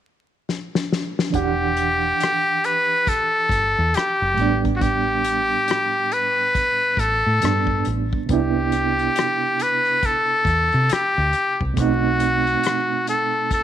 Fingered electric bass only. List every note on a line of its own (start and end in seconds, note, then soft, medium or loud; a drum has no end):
1.34 2.11 E1 medium
3.50 3.74 G1 medium
3.78 3.93 E2 medium
3.95 muted fingered electric bass stroke soft
4.22 4.37 F#1 medium
4.39 5.55 A1 medium
6.98 7.22 A1 medium
7.26 7.41 A2 medium
7.44 7.82 G2 medium
7.87 8.10 A1 medium
8.30 9.07 C2 loud
10.46 10.69 E2 medium
10.74 10.89 C3 medium
10.91 muted fingered electric bass stroke soft
11.18 11.32 D2 medium
11.61 11.76 C2 medium
11.78 12.55 B1 medium